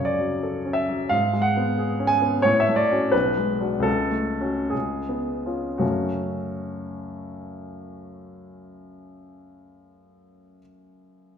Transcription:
0.00 1.08 F#2 soft
0.00 0.33 C#3 soft
0.00 1.14 C#5 medium
0.05 0.77 D5 medium
0.19 0.57 F#3 soft
0.43 0.80 A4 soft
0.65 1.03 C#4 soft
0.73 1.10 E5 medium
0.89 1.12 F#3 soft
1.09 2.41 G#2 soft
1.09 1.44 F5 medium
1.33 1.69 G#3 soft
1.42 2.10 F#5 medium
1.57 1.92 B3 soft
1.78 2.14 G#4 soft
2.00 2.36 C#4 soft
2.07 2.44 G#5 medium
2.22 2.45 B3 soft
2.42 3.13 A2 medium
2.42 2.62 C#5 medium
2.60 2.79 E5 medium
2.69 3.06 A3 soft
2.76 3.13 D5 medium
2.91 3.12 C#4 soft
2.91 3.12 F#4 soft
3.12 3.83 B1 soft
3.12 3.85 B4 medium
3.37 3.76 G#3 soft
3.61 3.83 D4 soft
3.61 3.84 F#4 soft
3.80 4.68 C#2 medium
3.80 4.72 A4 medium
4.11 4.60 A3 soft
4.41 4.70 C#4 soft
4.41 4.70 F#4 soft
4.70 5.77 C#2 soft
4.70 5.79 G#4 medium
5.09 5.68 B3 soft
5.46 5.78 C#4 soft
5.46 5.78 F4 soft
5.78 10.59 F#2 soft
5.78 10.59 C#3 soft
5.78 10.59 A3 soft
5.78 10.59 C#4 soft
5.78 10.57 F#4 soft

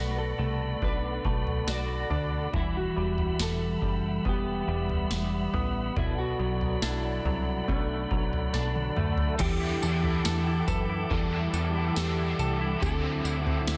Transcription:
0.00 0.34 B1 loud
0.00 2.53 B2 medium
0.00 0.38 A3 medium
0.00 1.67 F#4 medium
0.00 2.50 A4 medium
0.00 0.18 B4 medium
0.00 2.50 D5 medium
0.00 2.49 F#5 medium
0.00 9.35 B5 medium
0.18 0.84 A4 medium
0.39 0.77 C2 medium
0.39 1.24 A3 medium
0.82 1.20 B1 medium
0.82 2.09 D4 medium
0.82 1.69 B4 loud
0.82 kick medium
1.25 1.63 B1 medium
1.25 2.62 A3 medium
1.25 kick medium
1.47 floor tom medium
1.67 2.05 B1 loud
1.67 2.99 F#4 medium
1.67 2.29 D5 medium
1.67 snare loud
2.10 2.48 D2 medium
2.10 2.62 D4 medium
2.10 floor tom medium
2.53 2.91 E1 loud
2.53 5.96 E3 medium
2.53 5.92 G3 medium
2.53 2.77 E4 medium
2.53 5.93 E5 medium
2.53 9.35 F#5 medium
2.53 kick loud
2.53 floor tom loud
2.77 3.42 F#4 medium
2.96 3.34 E1 medium
2.96 3.81 G3 medium
3.18 floor tom medium
3.39 3.77 E1 loud
3.39 4.28 A4 medium
3.39 snare medium
3.82 4.20 F#1 medium
3.82 4.67 G3 medium
3.82 kick medium
4.25 4.63 E1 loud
4.25 5.53 B3 medium
4.25 5.51 G4 medium
4.25 kick medium
4.67 5.05 E1 medium
4.67 6.05 G3 medium
4.89 floor tom medium
5.10 5.48 E1 medium
5.10 snare medium
5.53 5.91 A1 medium
5.53 7.68 B3 medium
5.53 floor tom medium
5.96 6.34 B1 loud
5.96 9.39 B2 medium
5.96 6.18 E4 loud
5.96 9.36 A4 medium
5.96 9.36 D5 medium
5.96 kick loud
5.96 floor tom loud
6.18 6.84 F#4 medium
6.39 6.77 B1 medium
6.39 7.25 F#3 medium
6.61 floor tom medium
6.82 7.20 B1 loud
6.82 8.54 D4 medium
6.82 7.68 E4 medium
6.82 snare loud
7.25 7.63 C2 medium
7.25 8.10 F#3 medium
7.25 floor tom medium
7.68 8.06 B1 loud
7.68 8.96 A3 medium
7.68 8.92 D4 medium
7.68 kick medium
8.11 8.49 B1 medium
8.11 9.63 F#3 soft
8.11 kick medium
8.33 floor tom medium
8.53 8.91 B1 loud
8.53 9.60 D4 medium
8.53 snare medium
8.76 high tom medium
8.96 9.34 D2 medium
8.96 12.47 A3 medium
8.96 mid tom medium
9.17 floor tom medium
9.39 9.77 E2 loud
9.39 9.82 E3 medium
9.39 11.10 E3 medium
9.39 9.82 G3 medium
9.39 9.83 D4 medium
9.39 9.83 E4 medium
9.39 10.67 G4 medium
9.39 12.79 A4 medium
9.39 9.81 A4 medium
9.39 13.77 F#5 medium
9.39 12.79 G5 medium
9.39 13.77 D6 medium
9.39 kick loud
9.39 floor tom loud
9.39 crash medium
9.39 tambourine medium
9.61 10.03 E4 medium
9.82 10.20 E2 medium
9.82 11.11 D4 soft
9.82 11.12 E4 soft
9.82 10.25 A4 medium
9.82 11.13 A4 soft
9.82 tambourine medium
10.04 10.46 E4 medium
10.04 floor tom medium
10.25 10.63 E2 loud
10.25 10.68 A4 medium
10.25 snare loud
10.25 tambourine medium
10.47 10.89 E4 medium
10.68 11.06 F#2 medium
10.68 11.53 A4 medium
10.68 11.08 B4 medium
10.68 kick medium
10.68 floor tom medium
10.68 tambourine medium
10.89 11.32 E4 medium
11.10 11.48 E2 loud
11.10 12.81 E3 medium
11.10 11.94 G3 medium
11.10 11.96 D4 medium
11.10 11.97 E4 medium
11.10 11.96 A4 medium
11.10 11.98 A4 medium
11.10 kick medium
11.10 floor tom medium
11.32 11.75 E4 medium
11.53 11.91 E2 loud
11.53 11.96 A4 medium
11.53 tambourine medium
11.75 12.18 E4 soft
11.95 12.34 E2 loud
11.95 12.82 G3 medium
11.95 12.83 D4 medium
11.95 12.83 E4 medium
11.95 12.57 G4 medium
11.95 12.39 A4 medium
11.95 13.77 A4 medium
11.95 snare loud
11.95 tambourine medium
12.18 12.60 E4 medium
12.39 12.77 C2 medium
12.39 13.77 A4 medium
12.39 tambourine medium
12.61 13.24 E4 medium
12.80 13.20 D2 loud
12.80 13.77 D3 medium
12.80 13.77 F#3 medium
12.80 13.77 C4 medium
12.80 13.77 A4 loud
12.80 13.77 E5 medium
12.80 kick loud
12.80 floor tom loud
12.80 tambourine medium
12.85 13.77 E4 medium
13.03 13.46 C4 medium
13.24 13.62 D2 medium
13.24 13.67 E4 medium
13.24 tambourine medium
13.46 13.77 C4 medium
13.46 floor tom medium
13.67 13.77 D2 loud
13.67 13.77 E4 medium
13.67 snare loud
13.67 tambourine medium

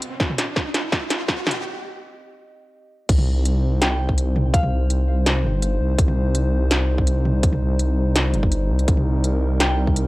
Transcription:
0.00 1.61 C4 medium
0.00 1.61 G4 medium
0.00 1.61 D#5 medium
0.00 closed hi-hat medium
0.00 riser medium
0.20 kick loud
0.20 snare medium
0.30 mid tom medium
0.38 snare medium
0.38 closed hi-hat medium
0.56 kick loud
0.56 snare medium
0.74 snare medium
0.74 closed hi-hat medium
0.92 kick loud
0.92 snare medium
1.10 snare medium
1.10 closed hi-hat medium
1.28 kick loud
1.28 snare medium
1.47 snare medium
1.47 mid tom medium
1.51 closed hi-hat medium
3.09 4.71 C2 loud
3.09 10.07 G3 medium
3.09 10.07 D#4 medium
3.09 8.85 C5 medium
3.09 kick loud
3.09 closed hi-hat medium
3.09 crash loud
3.18 mid tom medium
3.45 closed hi-hat medium
3.81 3.88 G5 medium
3.81 snare loud
3.81 closed hi-hat medium
3.91 3.97 G5 medium
4.09 kick medium
4.18 closed hi-hat medium
4.36 mid tom medium
4.54 4.81 F5 medium
4.54 kick loud
4.54 closed hi-hat medium
4.63 mid tom medium
4.72 5.46 C2 loud
4.90 closed hi-hat medium
5.26 snare loud
5.26 closed hi-hat medium
5.44 5.79 G1 loud
5.44 mid tom soft
5.62 closed hi-hat medium
5.80 5.97 C2 medium
5.98 7.60 C2 loud
5.98 kick loud
5.98 closed hi-hat medium
6.08 mid tom medium
6.35 closed hi-hat medium
6.71 snare loud
6.71 closed hi-hat medium
6.98 kick medium
7.07 closed hi-hat medium
7.25 mid tom medium
7.43 kick loud
7.43 closed hi-hat medium
7.52 mid tom medium
7.61 8.35 C2 loud
7.79 closed hi-hat medium
8.16 snare loud
8.16 closed hi-hat medium
8.34 8.71 G1 loud
8.34 closed hi-hat soft
8.34 mid tom soft
8.43 kick medium
8.52 closed hi-hat medium
8.70 8.86 C2 loud
8.79 closed hi-hat soft
8.88 10.07 C2 loud
8.88 10.07 A#4 medium
8.88 kick loud
8.88 closed hi-hat medium
8.97 mid tom soft
9.24 closed hi-hat medium
9.60 9.66 G5 medium
9.60 snare loud
9.60 closed hi-hat medium
9.69 9.75 G5 medium
9.87 kick medium
9.96 closed hi-hat medium

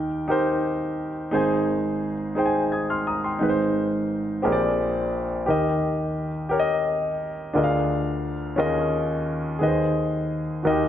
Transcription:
0.00 1.30 D#2 medium
0.00 1.30 D#3 medium
0.00 0.28 D#4 medium
0.00 0.29 G4 medium
0.00 0.30 A#4 medium
0.00 0.10 G5 medium
0.28 1.08 D#4 medium
0.28 1.09 G4 medium
0.28 1.10 A#4 medium
0.28 1.10 C5 medium
1.31 3.36 G#1 medium
1.31 3.36 G#2 medium
1.31 2.12 D#4 medium
1.31 2.13 G#4 medium
1.31 2.13 C5 medium
1.31 2.14 G#5 medium
2.35 3.16 D#4 medium
2.35 3.16 G#4 medium
2.35 3.17 C5 medium
2.35 2.44 G5 medium
2.46 2.76 G#5 medium
2.72 2.89 D#6 soft
2.72 2.88 G#6 soft
2.90 3.06 C6 medium
2.90 3.06 F6 medium
3.07 3.23 A#5 medium
3.07 3.23 D#6 medium
3.24 3.57 G5 soft
3.24 3.57 C6 medium
3.39 4.40 G#1 medium
3.39 4.40 G#2 medium
3.39 4.19 D#4 medium
3.39 4.20 G#4 medium
3.39 3.48 B4 medium
3.49 4.25 C5 medium
4.42 5.44 A#1 medium
4.42 5.44 A#2 medium
4.42 5.23 C4 medium
4.42 5.23 G4 medium
4.42 5.24 G#4 medium
4.42 5.24 A#4 medium
4.42 4.52 C#5 medium
4.52 5.28 D5 medium
5.46 7.51 D#2 medium
5.46 7.51 D#3 medium
5.46 6.26 G4 medium
5.46 6.27 A#4 medium
5.50 6.28 D#5 medium
6.49 7.30 G4 medium
6.49 7.30 A#4 medium
6.49 6.58 C#5 medium
6.60 7.35 D#5 loud
7.53 8.54 D2 medium
7.53 8.54 D3 medium
7.53 8.33 D4 medium
7.53 8.34 F4 medium
7.53 8.34 G#4 medium
7.53 8.35 A#4 medium
7.53 7.62 D#5 medium
7.64 8.38 F5 medium
8.56 9.57 D#2 medium
8.56 9.57 D#3 medium
8.56 9.36 C#4 medium
8.56 9.37 F4 medium
8.56 9.37 G#4 medium
8.56 9.38 A#4 medium
8.56 9.38 D#5 loud
9.59 10.60 D#2 medium
9.59 10.60 D#3 medium
9.59 10.39 G#4 medium
9.59 9.68 B4 medium
9.63 10.41 D#5 medium
9.68 10.44 C5 medium
10.63 10.88 D#2 medium
10.63 10.88 D#3 medium
10.63 10.70 F#4 medium
10.63 10.88 A#4 medium
10.63 10.88 D#5 medium
10.69 10.88 G4 medium

